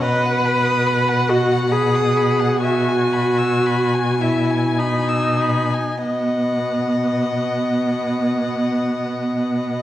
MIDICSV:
0, 0, Header, 1, 5, 480
1, 0, Start_track
1, 0, Key_signature, 5, "major"
1, 0, Tempo, 837989
1, 21, Time_signature, 3, 2, 24, 8
1, 981, Tempo, 923077
1, 1461, Tempo, 1013514
1, 1941, Tempo, 1125704
1, 2421, Tempo, 1273885
1, 4322, End_track
2, 0, Start_track
2, 0, Title_t, "Violin"
2, 0, Program_c, 0, 40
2, 11, Note_on_c, 0, 75, 42
2, 140, Note_on_c, 0, 78, 36
2, 149, Note_off_c, 0, 75, 0
2, 258, Note_on_c, 0, 83, 31
2, 266, Note_off_c, 0, 78, 0
2, 373, Note_on_c, 0, 87, 34
2, 381, Note_off_c, 0, 83, 0
2, 498, Note_on_c, 0, 83, 36
2, 506, Note_off_c, 0, 87, 0
2, 619, Note_on_c, 0, 78, 35
2, 627, Note_off_c, 0, 83, 0
2, 738, Note_on_c, 0, 75, 35
2, 747, Note_off_c, 0, 78, 0
2, 863, Note_on_c, 0, 78, 34
2, 872, Note_off_c, 0, 75, 0
2, 982, Note_on_c, 0, 83, 38
2, 989, Note_off_c, 0, 78, 0
2, 1103, Note_on_c, 0, 87, 33
2, 1110, Note_off_c, 0, 83, 0
2, 1216, Note_on_c, 0, 83, 33
2, 1224, Note_off_c, 0, 87, 0
2, 1335, Note_on_c, 0, 78, 30
2, 1343, Note_off_c, 0, 83, 0
2, 1453, Note_off_c, 0, 78, 0
2, 1456, Note_on_c, 0, 76, 35
2, 1578, Note_on_c, 0, 80, 29
2, 1586, Note_off_c, 0, 76, 0
2, 1693, Note_on_c, 0, 83, 29
2, 1700, Note_off_c, 0, 80, 0
2, 1812, Note_on_c, 0, 88, 30
2, 1819, Note_off_c, 0, 83, 0
2, 1944, Note_on_c, 0, 83, 31
2, 1951, Note_off_c, 0, 88, 0
2, 2063, Note_on_c, 0, 80, 31
2, 2070, Note_off_c, 0, 83, 0
2, 2180, Note_on_c, 0, 76, 28
2, 2187, Note_off_c, 0, 80, 0
2, 2303, Note_on_c, 0, 80, 26
2, 2309, Note_off_c, 0, 76, 0
2, 2425, Note_on_c, 0, 83, 28
2, 2431, Note_off_c, 0, 80, 0
2, 2537, Note_on_c, 0, 88, 25
2, 2542, Note_off_c, 0, 83, 0
2, 2661, Note_on_c, 0, 83, 24
2, 2667, Note_off_c, 0, 88, 0
2, 2781, Note_on_c, 0, 80, 23
2, 2787, Note_off_c, 0, 83, 0
2, 2901, Note_off_c, 0, 80, 0
2, 2902, Note_on_c, 0, 75, 30
2, 4322, Note_off_c, 0, 75, 0
2, 4322, End_track
3, 0, Start_track
3, 0, Title_t, "Violin"
3, 0, Program_c, 1, 40
3, 34, Note_on_c, 1, 78, 44
3, 1446, Note_off_c, 1, 78, 0
3, 1460, Note_on_c, 1, 80, 36
3, 2763, Note_off_c, 1, 80, 0
3, 2904, Note_on_c, 1, 78, 31
3, 4322, Note_off_c, 1, 78, 0
3, 4322, End_track
4, 0, Start_track
4, 0, Title_t, "Viola"
4, 0, Program_c, 2, 41
4, 29, Note_on_c, 2, 71, 65
4, 740, Note_on_c, 2, 66, 54
4, 748, Note_off_c, 2, 71, 0
4, 983, Note_on_c, 2, 68, 58
4, 991, Note_off_c, 2, 66, 0
4, 1462, Note_off_c, 2, 68, 0
4, 1466, Note_on_c, 2, 66, 50
4, 2165, Note_off_c, 2, 66, 0
4, 2185, Note_on_c, 2, 64, 40
4, 2422, Note_on_c, 2, 63, 41
4, 2428, Note_off_c, 2, 64, 0
4, 2895, Note_off_c, 2, 63, 0
4, 2898, Note_on_c, 2, 59, 32
4, 4322, Note_off_c, 2, 59, 0
4, 4322, End_track
5, 0, Start_track
5, 0, Title_t, "Cello"
5, 0, Program_c, 3, 42
5, 25, Note_on_c, 3, 47, 43
5, 2764, Note_off_c, 3, 47, 0
5, 2901, Note_on_c, 3, 47, 30
5, 4322, Note_off_c, 3, 47, 0
5, 4322, End_track
0, 0, End_of_file